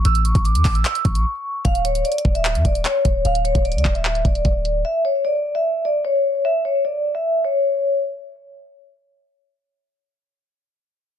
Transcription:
0.05 808-style bass A1, vibraphone E6, closed hi-hat
0.15 closed hi-hat
0.25 vibraphone C#6, closed hi-hat
0.35 808-style bass A1, kick, closed hi-hat
0.45 vibraphone D6, closed hi-hat
0.55 808-style bass E2, closed hi-hat
0.65 808-style bass A1, kick, clap, open hi-hat
0.75 vibraphone E6, closed hi-hat
0.85 clap, closed hi-hat
0.95 closed hi-hat
1.05 808-style bass A1, vibraphone C#6, kick, closed hi-hat
1.15 closed hi-hat
1.65 808-style bass D1, vibraphone F5, kick, closed hi-hat
1.75 closed hi-hat
1.85 vibraphone C#5, closed hi-hat
1.95 closed hi-hat
2.04 vibraphone D5, closed hi-hat
2.12 closed hi-hat
2.18 closed hi-hat
2.25 808-style bass D1, kick
2.35 vibraphone E5, closed hi-hat
2.45 clap, closed hi-hat
2.55 808-style bass F2, closed hi-hat
2.65 808-style bass D1, vibraphone D5, kick, closed hi-hat
2.75 closed hi-hat
2.85 vibraphone C#5, clap, closed hi-hat
3.05 808-style bass D1, kick, closed hi-hat
3.25 808-style bass D1, vibraphone F5, closed hi-hat
3.35 closed hi-hat
3.45 vibraphone C#5, closed hi-hat
3.55 808-style bass D1, kick, closed hi-hat
3.65 vibraphone D5, closed hi-hat
3.72 808-style bass D2, closed hi-hat
3.78 closed hi-hat
3.85 808-style bass D1, kick, clap
3.95 vibraphone E5, closed hi-hat
4.05 clap, closed hi-hat
4.15 closed hi-hat
4.25 808-style bass D1, vibraphone D5, kick, closed hi-hat
4.35 closed hi-hat
4.45 808-style bass D1, kick, closed hi-hat
4.65 closed hi-hat
4.85 vibraphone E5
5.05 vibraphone C#5
5.25 vibraphone D5
5.55 vibraphone E5
5.85 vibraphone D5
6.05 vibraphone C#5
6.45 vibraphone E5
6.65 vibraphone C#5
6.85 vibraphone D5
7.15 vibraphone E5
7.45 vibraphone C#5

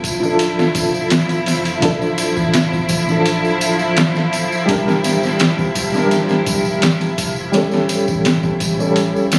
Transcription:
Already playing: sub bass D1, felt piano F3 D4 A4, string section F3 E4
0.04 kick, closed hi-hat, tambourine
0.20 felt piano F3 D4, tambourine
0.25 felt piano A4
0.39 closed hi-hat, tambourine
0.59 snare, tambourine
0.75 kick, closed hi-hat, tambourine
0.94 tambourine
1.10 snare, closed hi-hat, tambourine
1.29 closed hi-hat, tambourine
1.46 sub bass F1, snare, closed hi-hat, tambourine
1.65 closed hi-hat, tambourine
1.80 sub bass D1, felt piano F3 D4, kick, closed hi-hat, tambourine
1.85 felt piano A4
2.02 tambourine
2.18 closed hi-hat, tambourine
2.36 sub bass A1, kick, tambourine
2.54 snare, closed hi-hat, tambourine
2.73 kick, tambourine
2.89 kick, closed hi-hat, tambourine
3.06 felt piano F3 D4, tambourine
3.12 felt piano A4
3.25 closed hi-hat, tambourine
3.45 sub bass D1, tambourine
3.61 closed hi-hat, tambourine
3.79 tambourine
3.97 snare, closed hi-hat, tambourine
4.15 snare, tambourine
4.33 closed hi-hat, tambourine
4.52 tambourine
4.66 sub bass D1, felt piano G3 D4, kick, closed hi-hat, tambourine
4.71 felt piano A#4
4.88 snare, tambourine
5.04 snare, closed hi-hat, tambourine
5.23 snare, tambourine
5.39 snare, closed hi-hat, tambourine
5.58 kick, tambourine
5.75 kick, closed hi-hat, tambourine
5.92 felt piano G3 D4, snare, tambourine
5.97 felt piano A#4
6.11 snare, closed hi-hat, tambourine
6.29 snare, tambourine
6.46 kick, closed hi-hat, tambourine
6.65 tambourine
6.82 snare, closed hi-hat, tambourine
7.01 closed hi-hat, tambourine
7.18 sub bass F1, kick, closed hi-hat, tambourine
7.36 tambourine
7.52 sub bass D1, felt piano G3 C#4, snare, closed hi-hat, tambourine
7.57 felt piano A4
7.71 snare, tambourine
7.89 closed hi-hat, tambourine
8.08 sub bass A1, kick, tambourine
8.25 snare, closed hi-hat, tambourine
8.43 kick, tambourine
8.60 kick, closed hi-hat, tambourine
8.79 felt piano G3 C#4 A4, tambourine
8.96 closed hi-hat, tambourine
9.16 sub bass D1, tambourine
9.32 snare, closed hi-hat, tambourine

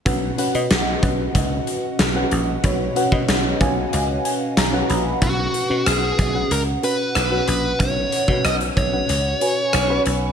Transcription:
0.05 slap bass B1, fm electric piano B2 C#4 F#4 B4 F#5, kick, closed hi-hat
0.38 fm electric piano C#4 F#4 B4 F#5, closed hi-hat
0.54 slap bass B2, fm electric piano C#4 F#4 B4 D#5, closed hi-hat
0.71 slap bass B1, snare, closed hi-hat
1.02 slap bass B1, fm electric piano C#4 F#4 B4 F#5, kick, closed hi-hat
1.35 slap bass C#2, kick, closed hi-hat
1.67 closed hi-hat
1.99 slap bass B1, snare, closed hi-hat
2.15 fm electric piano C#4 F#4 B4 F#5
2.31 slap bass A#1, closed hi-hat
2.63 slap bass B1, fm electric piano B2 C#4 F#4 B4 C#5, kick, closed hi-hat
2.96 fm electric piano C#4 F#4 B4 F#5, closed hi-hat
3.11 slap bass B2, fm electric piano C#4 F#4 B4 D#5, kick
3.28 slap bass B1, snare, closed hi-hat
3.60 slap bass B1, fm electric piano C#4 F#4 B4 F5 G#5, kick, closed hi-hat
3.93 slap bass C#2, fm electric piano F#5, closed hi-hat
4.25 fm electric piano G#5, closed hi-hat
4.57 slap bass B1, fm electric piano A#5, snare, closed hi-hat
4.73 fm electric piano C#4 F#4 B4 F#5
4.89 slap bass A#1, fm electric piano B5, closed hi-hat
5.21 slap bass B1, fm electric piano B2 C#4 F#4 B4 F#5, lead electric guitar F#4, kick, closed hi-hat
5.54 closed hi-hat
5.69 slap bass B2, fm electric piano C#4 F#4 B4 F#5
5.86 slap bass B1, lead electric guitar G#4, cross-stick, closed hi-hat
6.19 slap bass B1, kick, closed hi-hat
6.34 fm electric piano C#4 F#4 B4 F#5
6.51 slap bass C#2, lead electric guitar A#4, closed hi-hat
6.83 fm electric piano C#4 F#4 B4 F#5, lead electric guitar B4, closed hi-hat
7.15 slap bass B1, cross-stick, closed hi-hat
7.31 fm electric piano C#4 F#4 B4 F#5
7.48 slap bass A#1, lead electric guitar B4, closed hi-hat
7.79 slap bass B1, fm electric piano B2 C#4 F#4 B4 F#5, lead electric guitar C#5, kick, closed hi-hat
8.12 closed hi-hat
8.28 slap bass B2, fm electric piano C#4 F#4 B4 F#5, kick
8.45 slap bass B1, lead electric guitar D#5, cross-stick, closed hi-hat
8.61 closed hi-hat
8.77 slap bass B1, lead electric guitar C#5, kick, closed hi-hat
8.92 fm electric piano C#4 F#4 B4 F#5
9.09 slap bass C#2, closed hi-hat
9.41 fm electric piano C#4 F#4 B4 G#5, closed hi-hat
9.73 slap bass B1, fm electric piano F#5, cross-stick, closed hi-hat
9.89 fm electric piano C#4 F#4 B4 F#5 B5
10.06 slap bass B1, closed hi-hat

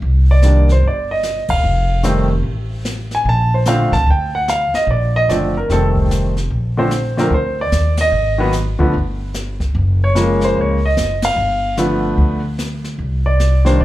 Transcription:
0.02 upright bass C2, brush sweep
0.31 grand piano D5
0.42 grand piano D#3 G3 A#3 D4, snare, hi-hat pedal
0.69 grand piano C5, snare
0.83 upright bass G1, brush sweep
0.87 grand piano D5
1.11 grand piano D#5
1.23 snare, hi-hat pedal
1.48 upright bass E1, grand piano F5, kick, ride
1.63 upright bass F1, brush sweep
2.03 grand piano D#3 G3 A3 C4, snare, hi-hat pedal
2.43 upright bass A1, brush sweep
2.85 snare, hi-hat pedal
3.11 grand piano G#5, snare
3.25 upright bass A#1, grand piano A5, brush sweep
3.54 grand piano C5
3.66 grand piano D3 F3 A3 C4 F5, snare, hi-hat pedal
3.92 upright bass A1, grand piano A5, kick, snare
4.07 upright bass D2, brush sweep
4.11 grand piano G5
4.35 grand piano F#5
4.48 grand piano F5, snare, hi-hat pedal
4.73 grand piano D#5, muted upright bass stroke, snare
4.87 upright bass A#1, grand piano D5, brush sweep
5.16 grand piano D#5
5.28 upright bass F#1, grand piano D3 F3 A3 C4 D5, snare, hi-hat pedal
5.57 grand piano A#4
5.70 upright bass F1, grand piano D#3 G3 A3 C4 A4, brush sweep, snare
5.96 kick
6.11 snare, hi-hat pedal
6.37 snare
6.51 upright bass A#1, brush sweep
6.77 grand piano D3 F3 A3 C4 C5
6.91 snare, hi-hat pedal
7.17 grand piano D3 F3 A3 C4 A#4, snare
7.30 upright bass D2, grand piano C5, brush sweep
7.61 grand piano D5
7.72 upright bass D#2, snare, hi-hat pedal
7.97 grand piano D#5, snare, ride
8.12 upright bass G#1, brush sweep
8.38 grand piano D#3 F#3 A#3 B3
8.52 snare, hi-hat pedal
8.79 upright bass D2, grand piano D3 F3 A3 B3
8.94 upright bass G1, brush sweep
9.34 snare, hi-hat pedal
9.60 kick, snare
9.75 upright bass F#1, brush sweep
10.04 grand piano C#5
10.15 grand piano C#3 F3 G#3 A#3, snare, hi-hat pedal
10.41 grand piano C5, snare
10.55 upright bass C#2, brush sweep
10.61 grand piano C#5
10.86 grand piano D#5
10.97 upright bass F#1, snare, hi-hat pedal
11.22 grand piano F5, snare, ride
11.36 upright bass G1, brush sweep
11.77 grand piano D3 F3 A3 B3, snare, hi-hat pedal
12.18 upright bass D2, brush sweep
12.58 snare, hi-hat pedal
12.84 snare
12.99 upright bass C2, brush sweep
13.26 grand piano D5
13.39 snare, hi-hat pedal
13.65 grand piano D#3 G3 A#3 D4 C5, snare
13.79 upright bass G1, grand piano D5, brush sweep

